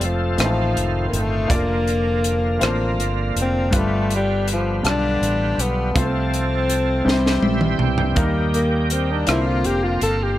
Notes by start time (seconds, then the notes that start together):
Already playing: F1 F3 A3 C4 F4 A4 C5
0.01 closed hi-hat
0.06 F3
0.36 A1 A2 D#3 G#3 A3 C4 D#4 F4 C5, cross-stick, closed hi-hat
0.43 F3 A3
0.76 F1, closed hi-hat
1.09 A#3
1.13 G1, closed hi-hat
1.19 A3
1.48 F1 C3 F3 A#3 D4 F4 D5, kick, closed hi-hat
1.56 D3 A#3
1.88 closed hi-hat
2.24 closed hi-hat
2.59 A1 A#3 C4 F4 C5, cross-stick, closed hi-hat
2.66 D4
2.98 G1, closed hi-hat
3.36 F1, closed hi-hat
3.42 C4
3.71 G1 G2 D3 G3 B3 D4 F4 B4, kick, closed hi-hat
3.78 A3
4.10 closed hi-hat
4.16 G3
4.48 closed hi-hat
4.53 F3
4.83 B1 G3 D4 F4 A4, cross-stick, closed hi-hat
4.89 D4
5.22 A1, closed hi-hat
5.58 B1 B3, closed hi-hat
5.94 C2 C3 F3 A3 C4 F4 A4 C5, kick, closed hi-hat
6.00 C4
6.34 closed hi-hat
6.70 closed hi-hat
7.05 C2 C3 E3 G3 C4 D#4 G4 C5, snare
7.13 E4
7.26 snare
7.42 A#1 E5, high tom
7.61 mid tom
7.78 C2 G5, mid tom
7.98 floor tom
8.16 D#2 D#3 G3 A#3 D#4 F4 A#4, kick, closed hi-hat
8.22 G4
8.54 A#3, closed hi-hat
8.90 C4, closed hi-hat
9.12 D4
9.27 C2 C3 D3 A#3 C4 D4 E4 F4 C5, cross-stick, closed hi-hat
9.43 E4
9.47 F4
9.64 F1 G4, closed hi-hat
9.84 F4
10.01 G1 A4, closed hi-hat
10.23 G4